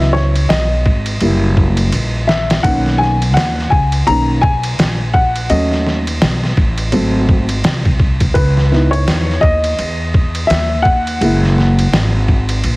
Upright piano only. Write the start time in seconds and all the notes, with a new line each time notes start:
Already playing: F#3 B3 E4 D#5 E5
0.13 C#5
0.49 D#5
1.21 G3 A#3 E4
2.27 E5
2.63 D#3 A#3 C#4 F#5
2.98 G#5
3.34 F#5
3.70 G#5
4.07 D#3 A#3 C#4 A#5
4.41 G#5
5.13 F#5
5.50 F#3 A3 C#4 D#5
6.92 F#3 A3 C4
8.34 B4
8.71 B3 D#4 E4
8.91 C#5
9.41 D#5
10.47 E5
10.82 F#5
11.21 G#3 A#3 E4